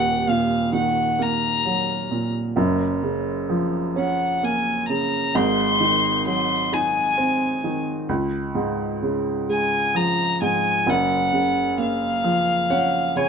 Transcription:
0.00 2.54 D#1 medium
0.00 2.54 D#2 medium
0.00 0.31 F#5 loud
0.28 2.08 A#2 soft
0.28 0.74 F5 medium
0.73 2.53 D#3 soft
0.73 1.23 F#5 medium
1.19 2.54 A#3 medium
1.19 2.24 A#5 medium
1.65 2.55 F#3 soft
2.11 2.56 A#2 soft
2.56 5.29 F#1 medium
2.56 5.30 F#2 medium
3.03 4.84 C#3 medium
3.50 5.30 F3 medium
3.96 5.30 C#4 medium
3.96 4.46 F#5 medium
4.43 5.32 A#3 medium
4.43 4.88 G#5 medium
4.89 5.33 C#3 medium
4.89 5.37 A#5 medium
5.35 8.06 G#1 medium
5.35 8.06 G#2 medium
5.35 6.27 C6 loud
5.81 7.60 D#3 medium
6.26 8.06 F#3 medium
6.26 6.75 C6 medium
6.73 8.06 D#4 medium
6.73 7.76 G#5 medium
7.18 8.07 C4 medium
7.64 8.09 D#3 medium
8.09 10.82 C#2 medium
8.55 10.36 G#2 medium
9.03 10.82 C#3 soft
9.49 10.82 G#3 medium
9.49 9.98 G#5 medium
9.95 10.84 F3 medium
9.95 10.41 A#5 loud
10.41 10.85 G#2 medium
10.41 10.91 G#5 medium
10.86 13.29 F#1 medium
10.86 13.29 F#2 medium
10.86 11.80 F#5 medium
11.33 13.13 C#3 medium
11.78 13.29 A#3 medium
11.78 13.14 F5 medium
12.24 13.29 F3 medium
12.70 13.29 C#4 medium
12.70 13.14 F#5 medium
13.16 13.29 C#3 medium
13.16 13.29 C#5 medium
13.16 13.29 G#5 loud

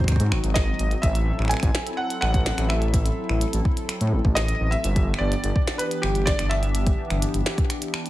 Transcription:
0.00 4.80 F#3 medium
0.00 4.80 C4 medium
0.00 0.99 D#4 medium
0.00 1.01 F#4 loud
0.00 0.28 C5 medium
0.00 kick medium
0.04 finger snap medium
0.04 kick medium
0.04 closed hi-hat medium
0.08 kick medium
0.12 kick medium
0.16 0.33 G#2 loud
0.16 kick medium
0.16 closed hi-hat medium
0.32 0.39 G#1 loud
0.32 finger snap medium
0.44 0.72 G#1 loud
0.44 closed hi-hat soft
0.54 1.04 D#5 medium
0.54 finger snap medium
0.54 kick loud
0.54 snare loud
0.54 closed hi-hat medium
0.79 0.94 G#1 medium
0.79 closed hi-hat medium
0.91 closed hi-hat soft
1.02 1.32 A1 loud
1.02 4.80 E4 medium
1.02 4.80 A4 medium
1.02 1.52 E5 loud
1.02 kick loud
1.02 closed hi-hat medium
1.15 closed hi-hat medium
1.39 1.54 A1 loud
1.39 finger snap soft
1.42 finger snap soft
1.45 finger snap soft
1.48 1.99 G#5 loud
1.48 finger snap soft
1.51 finger snap soft
1.51 closed hi-hat medium
1.54 finger snap soft
1.57 finger snap soft
1.60 1.70 A1 medium
1.60 finger snap soft
1.60 kick loud
1.60 closed hi-hat medium
1.75 snare loud
1.87 closed hi-hat soft
1.97 2.19 F#5 loud
2.10 closed hi-hat soft
2.21 2.51 A1 medium
2.21 2.66 F#5 loud
2.21 finger snap medium
2.34 kick loud
2.34 closed hi-hat soft
2.46 snare loud
2.46 closed hi-hat medium
2.58 3.10 A1 medium
2.58 finger snap medium
2.58 closed hi-hat medium
2.69 3.37 E5 medium
2.69 finger snap medium
2.82 closed hi-hat soft
2.94 kick loud
2.94 closed hi-hat medium
3.06 closed hi-hat soft
3.29 3.44 A1 medium
3.29 finger snap medium
3.41 closed hi-hat medium
3.53 3.61 A1 medium
3.53 closed hi-hat medium
3.65 kick loud
3.77 closed hi-hat soft
3.89 finger snap medium
3.89 closed hi-hat medium
4.01 4.14 A2 loud
4.01 closed hi-hat soft
4.13 4.20 A1 loud
4.25 4.53 A1 loud
4.25 kick loud
4.35 4.69 D#5 loud
4.35 finger snap medium
4.35 snare loud
4.35 closed hi-hat medium
4.48 closed hi-hat medium
4.60 4.75 A1 medium
4.71 5.16 E5 loud
4.71 closed hi-hat soft
4.84 5.13 G1 loud
4.84 8.10 E3 medium
4.84 8.10 B3 medium
4.84 8.10 D4 medium
4.84 8.10 G4 medium
4.84 closed hi-hat medium
4.96 kick loud
4.96 closed hi-hat medium
5.14 finger snap medium
5.18 5.35 G1 loud
5.18 5.81 D5 loud
5.32 closed hi-hat medium
5.44 5.51 G1 medium
5.44 closed hi-hat medium
5.56 kick loud
5.67 snare loud
5.67 closed hi-hat soft
5.78 6.01 B4 loud
5.78 closed hi-hat medium
5.91 closed hi-hat medium
6.02 6.32 G1 medium
6.02 6.25 G4 medium
6.02 finger snap medium
6.15 closed hi-hat soft
6.26 6.51 D5 loud
6.26 kick loud
6.26 snare loud
6.26 closed hi-hat medium
6.39 6.91 G1 medium
6.39 finger snap medium
6.39 closed hi-hat medium
6.49 8.10 E5 loud
6.49 finger snap medium
6.63 closed hi-hat soft
6.75 closed hi-hat medium
6.87 kick loud
6.87 closed hi-hat medium
7.10 7.25 G1 loud
7.10 finger snap medium
7.10 closed hi-hat soft
7.22 closed hi-hat medium
7.34 7.42 G1 medium
7.34 closed hi-hat medium
7.46 snare loud
7.58 kick loud
7.58 closed hi-hat soft
7.70 finger snap medium
7.70 closed hi-hat medium
7.82 closed hi-hat medium
7.94 finger snap medium
8.06 closed hi-hat soft

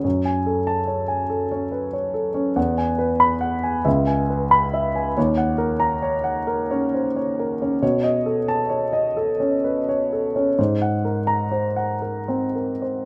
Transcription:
0.04 2.53 F#2 soft
0.04 0.38 C#5 soft
0.25 0.59 G#5 soft
0.46 0.80 A4 soft
0.67 1.01 A5 medium
0.87 1.22 C#5 soft
1.08 1.43 G#5 soft
1.30 1.64 A4 soft
1.51 1.85 C#4 soft
1.51 1.85 C#5 soft
1.72 1.93 B4 soft
1.93 2.27 C#5 soft
2.14 2.48 A4 soft
2.34 2.56 C#4 soft
2.34 2.56 C#5 soft
2.56 3.81 E2 soft
2.56 2.90 F#5 soft
2.78 3.12 G#5 soft
2.98 3.33 B4 soft
3.20 3.54 B5 medium
3.41 3.76 F#5 soft
3.63 3.86 G#5 soft
3.85 5.12 C#2 medium
3.85 4.21 E5 soft
4.07 4.43 G#5 soft
4.30 4.65 B4 soft
4.51 4.86 B5 medium
4.74 5.08 E5 soft
4.96 5.17 G#5 soft
5.17 7.79 D#2 medium
5.17 5.51 C#5 soft
5.37 5.71 F#5 soft
5.58 5.93 A#4 soft
5.80 6.15 A#5 medium
6.03 6.38 C#5 soft
6.24 6.61 F#5 soft
6.47 6.84 A#4 medium
6.71 7.07 C#4 soft
6.71 7.07 C#5 soft
6.94 7.16 C5 soft
7.16 7.52 C#5 soft
7.39 7.74 A#4 soft
7.62 7.83 C#4 soft
7.62 7.81 C#5 soft
7.82 10.54 B2 soft
7.82 8.17 C#5 soft
8.04 8.38 D#5 soft
8.26 8.61 A4 soft
8.48 8.84 A5 medium
8.70 9.07 C#5 soft
8.93 9.31 D#5 soft
9.17 9.55 A4 soft
9.40 9.78 C#4 soft
9.40 9.78 C#5 soft
9.64 9.88 B4 soft
9.89 10.26 C#5 soft
10.13 10.49 A4 soft
10.36 10.58 C#4 soft
10.36 10.58 C#5 soft
10.59 13.05 G#2 soft
10.59 10.95 C5 soft
10.82 11.18 F#5 soft
11.05 11.42 A#4 soft
11.27 11.67 A#5 medium
11.52 11.92 C5 soft
11.76 12.18 F#5 soft
12.02 12.44 A#4 soft
12.28 12.71 C4 soft
12.28 12.71 C5 soft
12.55 12.82 A#4 soft
12.82 13.05 C5 soft

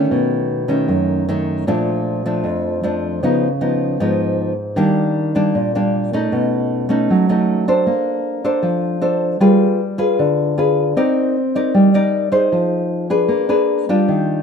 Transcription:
0.00 0.66 D#3 medium
0.00 0.66 A3 soft
0.00 0.66 C#4 medium
0.11 0.87 B2 medium
0.68 1.24 D#3 soft
0.68 1.25 A3 soft
0.68 1.24 C#4 medium
0.88 1.64 F#2 medium
1.29 1.64 D#3 medium
1.29 1.64 A3 soft
1.29 1.64 C#4 medium
1.67 2.43 A#2 medium
1.67 2.22 F3 medium
1.67 2.22 A3 medium
1.67 2.22 D4 medium
2.26 2.80 F3 medium
2.26 2.81 A3 soft
2.26 2.80 D4 medium
2.44 3.20 F2 medium
2.83 3.20 F3 medium
2.83 3.20 A3 soft
2.83 3.21 D4 medium
3.23 3.98 C#3 medium
3.23 3.47 F3 soft
3.23 3.48 B3 medium
3.23 3.48 D#4 medium
3.61 3.96 F3 soft
3.61 3.96 B3 soft
3.61 3.96 D#4 soft
4.00 4.75 G#2 medium
4.00 4.52 F3 medium
4.00 4.52 B3 soft
4.00 4.52 D#4 medium
4.76 5.52 D#3 medium
4.76 5.32 G3 soft
4.76 5.32 A#3 medium
4.76 5.32 D4 medium
5.35 5.71 G3 soft
5.35 5.71 A#3 medium
5.35 5.71 D4 medium
5.55 6.30 A#2 medium
5.75 6.10 G3 soft
5.75 6.10 A#3 medium
5.75 6.10 D4 medium
6.13 6.87 A3 medium
6.13 6.88 C#4 medium
6.13 6.88 D#4 medium
6.32 7.08 B2 medium
6.89 7.25 A3 medium
6.89 7.26 C#4 soft
6.89 7.26 D#4 medium
7.10 7.85 F#3 medium
7.29 7.65 A3 soft
7.29 7.65 C#4 soft
7.29 7.65 D#4 medium
7.68 8.42 D4 medium
7.68 8.42 A4 medium
7.68 8.42 C5 medium
7.87 8.62 A#3 medium
8.44 9.00 D4 medium
8.44 9.00 A4 medium
8.44 9.00 C5 medium
8.63 9.39 F3 medium
9.02 9.38 D4 soft
9.02 9.38 A4 medium
9.02 9.38 C5 soft
9.40 10.17 G3 medium
9.40 9.80 F4 medium
9.40 9.80 G#4 medium
9.40 9.80 B4 medium
9.98 10.54 F4 medium
9.98 10.54 G#4 medium
9.98 10.55 B4 medium
10.19 10.95 D3 medium
10.58 10.94 F4 soft
10.58 10.94 G#4 soft
10.58 10.94 B4 soft
10.97 11.73 C4 medium
10.97 11.36 D#4 medium
10.97 11.36 A#4 medium
10.97 11.36 D5 medium
11.55 11.91 D#4 soft
11.55 11.91 A#4 medium
11.55 11.91 D5 medium
11.74 12.50 G3 medium
11.94 12.30 D#4 medium
11.94 12.30 A#4 medium
11.94 12.30 D5 medium
12.32 13.07 D#4 medium
12.32 13.07 G#4 medium
12.32 13.07 C5 medium
12.52 13.28 F3 medium
13.10 13.46 D4 soft
13.10 13.46 G#4 medium
13.10 13.46 B4 medium
13.28 13.89 A#3 medium
13.49 13.85 D4 medium
13.49 13.85 G#4 medium
13.49 13.85 B4 medium
13.89 14.43 G3 medium
13.89 14.43 D4 medium
13.89 14.43 F4 medium
14.08 14.43 D#3 medium

